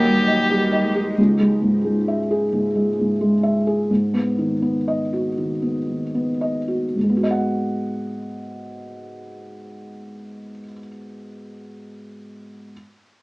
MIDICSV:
0, 0, Header, 1, 5, 480
1, 0, Start_track
1, 0, Key_signature, 5, "minor"
1, 0, Tempo, 674916
1, 837, Time_signature, 4, 2, 24, 8
1, 2276, Tempo, 692042
1, 2756, Tempo, 730816
1, 3716, Tempo, 777202
1, 4196, Tempo, 821918
1, 8339, End_track
2, 0, Start_track
2, 0, Title_t, "Ambient pad"
2, 0, Program_c, 0, 92
2, 0, Note_on_c, 0, 63, 54
2, 0, Note_on_c, 0, 67, 49
2, 0, Note_on_c, 0, 75, 55
2, 835, Note_off_c, 0, 75, 0
2, 838, Note_off_c, 0, 63, 0
2, 840, Note_off_c, 0, 67, 0
2, 8339, End_track
3, 0, Start_track
3, 0, Title_t, "Violin"
3, 0, Program_c, 1, 40
3, 0, Note_on_c, 1, 67, 37
3, 695, Note_off_c, 1, 67, 0
3, 8339, End_track
4, 0, Start_track
4, 0, Title_t, "Felt piano"
4, 0, Program_c, 2, 0
4, 0, Control_c, 2, 64, 127
4, 0, Note_on_c, 2, 39, 34
4, 0, Note_on_c, 2, 70, 40
4, 38, Note_on_c, 2, 55, 22
4, 198, Note_on_c, 2, 75, 25
4, 295, Note_off_c, 2, 55, 0
4, 360, Note_on_c, 2, 67, 30
4, 454, Note_off_c, 2, 75, 0
4, 515, Note_on_c, 2, 75, 28
4, 570, Note_off_c, 2, 70, 0
4, 615, Note_off_c, 2, 67, 0
4, 677, Note_on_c, 2, 67, 27
4, 773, Note_off_c, 2, 75, 0
4, 811, Note_off_c, 2, 39, 0
4, 837, Note_off_c, 2, 67, 0
4, 839, Note_on_c, 2, 37, 34
4, 852, Control_c, 2, 64, 0
4, 966, Control_c, 2, 64, 127
4, 993, Note_on_c, 2, 56, 30
4, 1151, Note_on_c, 2, 44, 31
4, 1247, Note_off_c, 2, 56, 0
4, 1310, Note_on_c, 2, 56, 31
4, 1406, Note_off_c, 2, 44, 0
4, 1480, Note_on_c, 2, 76, 34
4, 1566, Note_off_c, 2, 56, 0
4, 1642, Note_on_c, 2, 68, 31
4, 1731, Note_off_c, 2, 76, 0
4, 1764, Note_off_c, 2, 37, 0
4, 1797, Note_on_c, 2, 44, 32
4, 1893, Note_off_c, 2, 68, 0
4, 1958, Note_on_c, 2, 56, 30
4, 2052, Note_off_c, 2, 44, 0
4, 2126, Note_on_c, 2, 44, 30
4, 2214, Note_off_c, 2, 56, 0
4, 2282, Note_on_c, 2, 56, 34
4, 2377, Note_off_c, 2, 44, 0
4, 2437, Note_on_c, 2, 76, 35
4, 2533, Note_off_c, 2, 56, 0
4, 2601, Note_on_c, 2, 68, 37
4, 2692, Note_off_c, 2, 76, 0
4, 2759, Note_off_c, 2, 68, 0
4, 2764, Note_on_c, 2, 44, 38
4, 2769, Control_c, 2, 64, 0
4, 2908, Control_c, 2, 64, 127
4, 2916, Note_on_c, 2, 59, 33
4, 3079, Note_on_c, 2, 51, 33
4, 3166, Note_off_c, 2, 59, 0
4, 3235, Note_on_c, 2, 59, 33
4, 3329, Note_off_c, 2, 51, 0
4, 3403, Note_on_c, 2, 75, 34
4, 3489, Note_off_c, 2, 59, 0
4, 3568, Note_on_c, 2, 66, 31
4, 3657, Note_off_c, 2, 75, 0
4, 3694, Note_off_c, 2, 44, 0
4, 3732, Note_on_c, 2, 51, 30
4, 3818, Note_off_c, 2, 66, 0
4, 3881, Note_on_c, 2, 59, 24
4, 3977, Note_off_c, 2, 51, 0
4, 4034, Note_on_c, 2, 51, 24
4, 4134, Note_off_c, 2, 59, 0
4, 4205, Note_on_c, 2, 59, 29
4, 4290, Note_off_c, 2, 51, 0
4, 4360, Note_on_c, 2, 75, 28
4, 4455, Note_off_c, 2, 59, 0
4, 4515, Note_on_c, 2, 66, 24
4, 4615, Note_off_c, 2, 75, 0
4, 4676, Note_off_c, 2, 66, 0
4, 4676, Note_on_c, 2, 44, 24
4, 4689, Control_c, 2, 64, 0
4, 4720, Note_on_c, 2, 56, 23
4, 4759, Note_on_c, 2, 59, 22
4, 4801, Note_on_c, 2, 66, 22
4, 4830, Control_c, 2, 64, 127
4, 4840, Note_on_c, 2, 75, 24
4, 4883, Note_on_c, 2, 78, 21
4, 6754, Note_off_c, 2, 44, 0
4, 6798, Note_off_c, 2, 56, 0
4, 6837, Note_off_c, 2, 59, 0
4, 6879, Note_off_c, 2, 66, 0
4, 6918, Note_off_c, 2, 75, 0
4, 6961, Note_off_c, 2, 78, 0
4, 8050, Control_c, 2, 64, 0
4, 8339, End_track
5, 0, Start_track
5, 0, Title_t, "Cello"
5, 0, Program_c, 3, 42
5, 0, Note_on_c, 3, 55, 36
5, 311, Note_off_c, 3, 55, 0
5, 359, Note_on_c, 3, 55, 34
5, 595, Note_on_c, 3, 56, 35
5, 606, Note_off_c, 3, 55, 0
5, 836, Note_off_c, 3, 56, 0
5, 8339, End_track
0, 0, End_of_file